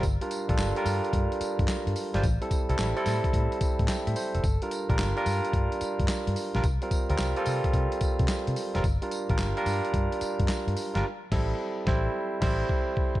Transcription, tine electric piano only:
X:1
M:4/4
L:1/16
Q:"Swing 16ths" 1/4=109
K:Gdor
V:1 name="Tine electric piano"
z [G,DFB]2 [G,DFA]2 [G,DFB]6- [G,DFB] z3 [G,DFc] | z [G,CEA]2 [G,CEA]2 [G,CEA]6- [G,CEA] [eg] [ce] [Ac] A- | A [G,DFB]2 [G,DFB]2 [G,DFB]6- [G,DFB] z3 [G,DFB] | z [G,CFB]2 [G,CFB]2 [G,CFA]6- [G,CFA] z3 [G,CFB] |
z [G,DFB]2 [G,DFB]2 [G,DFB]6- [G,DFB] z3 [G,DFB] | z2 [G,CEA]2 z2 [G,CEc]2 z2 [G,CEc]2 z4 |]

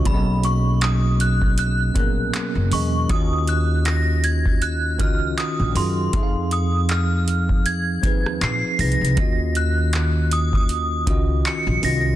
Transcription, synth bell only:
X:1
M:4/4
L:1/16
Q:"Swing 16ths" 1/4=79
K:Ebm
V:1 name="Synth bell"
=b2 ^c'2 ^d'2 ^f'2 f'6 c'2 | e'2 g'2 b'2 a'2 g'2 f'2 e'2 =c'2- | =c'2 e'2 f'4 a'4 =c''2 b'2- | b'2 g'4 e' e'4- e' d''2 b'2 |]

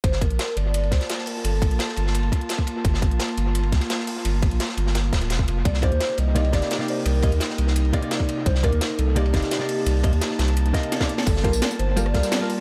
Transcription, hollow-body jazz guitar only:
X:1
M:4/4
L:1/16
Q:1/4=171
K:Gm
V:1 name="Hollow-body jazz guitar"
z16 | z16 | z16 | z16 |
z2 [C,B,Ed] z4 z [C,B,Ed] z [C,B,Ed]3 [C,B,Ed]3- | [C,B,Ed]2 [C,B,Ee] z6 z [C,B,Ed] [C,B,Ed]4- [C,B,Ed]- | [C,B,Ed]2 [C,B,Ed] z4 z [C,B,Ed] z [C,B,Ed]3 [C,B,Ed]3- | [C,B,Ed]2 [C,B,Ee] z6 z [C,B,Ee]3 [C,B,Ed] z2 |
z2 [G,FAB] z4 z [G,FAB] z [G,FAB]3 [G,FBa]3 |]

